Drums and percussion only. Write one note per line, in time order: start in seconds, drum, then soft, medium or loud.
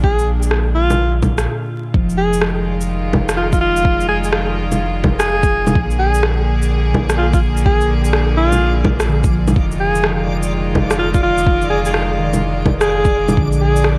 0.04 kick loud
0.19 shaker soft
0.43 shaker medium
0.51 cross-stick medium
0.90 low bongo soft
0.90 shaker medium
1.23 kick medium
1.23 low bongo medium
1.23 shaker soft
1.38 cross-stick loud
1.38 shaker medium
1.94 kick loud
2.10 shaker soft
2.33 shaker medium
2.42 cross-stick loud
2.81 shaker medium
3.13 kick medium
3.13 low bongo medium
3.29 cross-stick loud
3.29 shaker medium
3.53 kick loud
3.53 shaker soft
3.77 shaker medium
3.85 kick loud
4.00 shaker soft
4.24 shaker medium
4.33 cross-stick loud
4.72 low bongo soft
4.72 shaker medium
5.04 kick loud
5.04 low bongo medium
5.20 cross-stick loud
5.20 shaker medium
5.43 kick loud
5.43 shaker soft
5.67 low bongo medium
5.67 shaker medium
5.75 kick loud
5.91 shaker soft
6.15 shaker medium
6.23 cross-stick loud
6.62 shaker medium
6.94 kick medium
6.94 low bongo soft
7.10 cross-stick loud
7.10 shaker medium
7.33 kick loud
7.33 shaker soft
7.57 shaker medium
7.66 kick loud
7.81 shaker soft
8.05 shaker medium
8.13 cross-stick loud
8.52 low bongo soft
8.52 shaker medium
8.84 kick loud
8.84 low bongo medium
9.00 cross-stick loud
9.00 shaker medium
9.24 kick loud
9.24 shaker soft
9.48 low bongo soft
9.48 shaker medium
9.56 kick loud
9.71 shaker soft
9.95 shaker medium
10.04 cross-stick loud
10.43 shaker medium
10.75 kick medium
10.75 low bongo soft
10.91 cross-stick loud
10.91 shaker medium
11.14 kick loud
11.14 shaker soft
11.38 shaker medium
11.47 kick loud
11.62 shaker soft
11.85 shaker medium
11.94 cross-stick medium
12.34 low bongo soft
12.34 shaker medium
12.66 kick loud
12.66 low bongo medium
12.81 cross-stick loud
12.81 shaker medium
13.05 kick loud
13.05 shaker soft
13.29 low bongo medium
13.29 shaker medium
13.37 kick loud
13.53 shaker soft
13.76 shaker medium
13.84 cross-stick loud